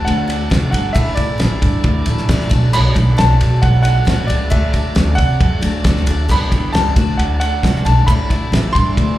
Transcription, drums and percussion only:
0.08 ride
0.30 ride
0.51 kick, snare, ride
0.74 ride
0.95 kick, ride
1.17 kick, ride
1.40 snare, ride
1.62 kick, ride
1.84 kick, ride
2.06 ride
2.18 snare
2.29 kick, snare, ride
2.41 snare
2.51 kick, ride
2.73 crash
2.96 kick, ride
3.18 snare, ride
3.41 ride
3.63 kick, ride
3.85 ride
4.07 kick, snare, ride
4.30 ride
4.52 kick, ride
4.74 kick, ride
4.96 snare, ride
5.18 kick, ride
5.41 kick, ride
5.62 ride
5.84 kick, snare, ride
5.96 snare
6.07 ride
6.29 kick, crash
6.52 kick, ride
6.75 snare, ride
6.96 kick, ride
7.19 ride
7.41 ride
7.63 kick, snare, ride
7.75 snare
7.86 ride
8.08 kick, ride
8.30 kick, ride
8.53 snare, ride
8.75 kick, ride
8.97 kick, ride

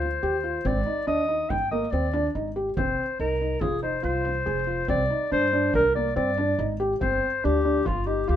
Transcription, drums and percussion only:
0.02 frame drum
0.65 frame drum
1.50 frame drum
1.71 frame drum
2.14 frame drum
2.35 frame drum
2.56 frame drum
2.77 frame drum
3.61 frame drum
4.25 frame drum
4.88 frame drum
5.74 frame drum
6.38 frame drum
7.01 frame drum
7.86 frame drum

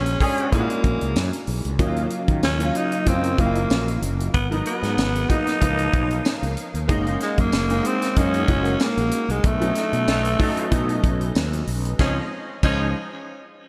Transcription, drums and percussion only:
0.06 closed hi-hat
0.20 kick, open hi-hat
0.38 closed hi-hat
0.52 kick, closed hi-hat
0.70 closed hi-hat
0.84 kick, closed hi-hat
1.01 closed hi-hat
1.16 snare, tambourine
1.33 closed hi-hat
1.47 open hi-hat
1.65 closed hi-hat
1.79 kick, closed hi-hat
1.96 closed hi-hat
2.10 closed hi-hat
2.28 kick, closed hi-hat
2.43 snare, tambourine
2.60 closed hi-hat
2.75 closed hi-hat
2.92 closed hi-hat
3.06 kick, closed hi-hat
3.24 closed hi-hat
3.38 kick, closed hi-hat
3.55 closed hi-hat
3.70 snare, tambourine
3.88 closed hi-hat
4.02 closed hi-hat
4.20 closed hi-hat
4.34 kick, closed hi-hat
4.52 closed hi-hat
4.66 closed hi-hat
4.83 snare, closed hi-hat
4.98 snare, tambourine
5.15 closed hi-hat
5.30 kick, closed hi-hat
5.47 snare, closed hi-hat
5.61 kick, closed hi-hat
5.78 closed hi-hat
5.93 kick, closed hi-hat
6.11 closed hi-hat
6.25 snare, tambourine
6.43 closed hi-hat
6.57 closed hi-hat
6.75 closed hi-hat
6.89 kick, closed hi-hat
7.07 closed hi-hat
7.20 snare, closed hi-hat
7.38 kick, closed hi-hat
7.52 snare, tambourine
7.70 closed hi-hat
7.85 closed hi-hat
8.02 snare, closed hi-hat
8.16 kick, closed hi-hat
8.34 closed hi-hat
8.48 kick, closed hi-hat
8.65 closed hi-hat
8.80 snare, tambourine
8.97 closed hi-hat
9.11 closed hi-hat
9.29 closed hi-hat
9.44 kick, closed hi-hat
9.61 closed hi-hat
9.75 snare, closed hi-hat
9.93 closed hi-hat
10.08 snare, tambourine
10.25 closed hi-hat
10.40 kick, open hi-hat
10.57 closed hi-hat
10.71 kick, closed hi-hat
10.89 closed hi-hat
11.04 kick, closed hi-hat
11.21 closed hi-hat
11.35 snare, tambourine
11.53 closed hi-hat
11.67 open hi-hat
11.85 closed hi-hat
11.99 kick, snare, tambourine
12.63 kick, crash, tambourine

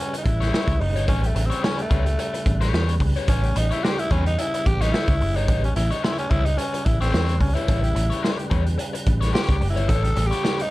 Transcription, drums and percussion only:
0.14 closed hi-hat
0.26 kick, closed hi-hat
0.42 snare, closed hi-hat
0.54 snare
0.68 kick, closed hi-hat
0.81 open hi-hat
0.96 closed hi-hat
1.08 kick, closed hi-hat
1.24 closed hi-hat
1.36 closed hi-hat
1.51 closed hi-hat
1.64 snare
1.79 closed hi-hat
1.91 kick, closed hi-hat
2.06 closed hi-hat
2.19 closed hi-hat
2.34 closed hi-hat
2.46 kick, closed hi-hat
2.61 snare, closed hi-hat
2.74 snare
2.89 closed hi-hat
3.00 kick, open hi-hat
3.17 closed hi-hat
3.28 kick, closed hi-hat
3.43 closed hi-hat
3.56 closed hi-hat
3.71 closed hi-hat
3.85 snare
3.99 closed hi-hat
4.10 kick, closed hi-hat
4.26 closed hi-hat
4.39 closed hi-hat
4.54 closed hi-hat
4.66 kick, closed hi-hat
4.81 snare, closed hi-hat
4.94 snare
5.08 kick, closed hi-hat
5.21 open hi-hat
5.37 closed hi-hat
5.48 kick, closed hi-hat
5.64 closed hi-hat
5.76 closed hi-hat
5.91 closed hi-hat
6.04 snare
6.18 closed hi-hat
6.30 kick, closed hi-hat
6.46 closed hi-hat
6.58 closed hi-hat
6.74 closed hi-hat
6.86 kick, closed hi-hat
7.02 snare, closed hi-hat
7.14 snare
7.29 closed hi-hat
7.41 kick, open hi-hat
7.57 closed hi-hat
7.68 kick, closed hi-hat
7.84 closed hi-hat
7.96 closed hi-hat
8.12 closed hi-hat
8.25 snare
8.39 closed hi-hat
8.51 kick, closed hi-hat
8.67 closed hi-hat
8.79 closed hi-hat
8.95 closed hi-hat
9.06 kick, closed hi-hat
9.22 snare, closed hi-hat
9.35 snare
9.49 kick, closed hi-hat
9.61 open hi-hat
9.77 closed hi-hat
9.89 kick, closed hi-hat
10.04 closed hi-hat
10.16 closed hi-hat
10.32 closed hi-hat
10.45 snare
10.60 closed hi-hat

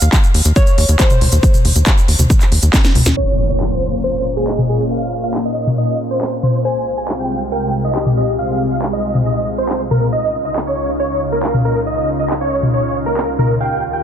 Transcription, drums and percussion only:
0.01 closed hi-hat, shaker
0.13 kick, clap, closed hi-hat, shaker
0.24 closed hi-hat, shaker
0.34 open hi-hat
0.45 closed hi-hat, shaker
0.56 kick, closed hi-hat, shaker
0.67 closed hi-hat, shaker
0.78 open hi-hat
0.89 closed hi-hat, shaker
0.99 kick, clap, closed hi-hat, shaker
1.10 closed hi-hat, mid tom, shaker
1.21 open hi-hat
1.32 closed hi-hat, shaker
1.43 kick, closed hi-hat, shaker
1.54 closed hi-hat, mid tom, shaker
1.65 open hi-hat
1.76 closed hi-hat, shaker
1.86 kick, clap, closed hi-hat, shaker
1.97 closed hi-hat, shaker
2.08 open hi-hat
2.19 closed hi-hat, mid tom, shaker
2.30 kick, closed hi-hat, shaker
2.41 clap, closed hi-hat, shaker
2.52 open hi-hat
2.62 closed hi-hat, shaker
2.74 kick, snare, clap, closed hi-hat, shaker
2.84 snare, closed hi-hat, shaker
2.95 open hi-hat, mid tom
3.06 snare, closed hi-hat, shaker
3.60 clap
4.47 clap
4.58 mid tom
5.34 clap
5.67 mid tom
6.21 clap
6.43 mid tom
7.08 clap
7.95 clap
8.06 mid tom
8.82 clap
9.15 mid tom
9.69 clap
9.91 mid tom
10.56 clap
11.43 clap
11.54 mid tom
12.30 clap
12.63 mid tom
13.17 clap
13.39 mid tom

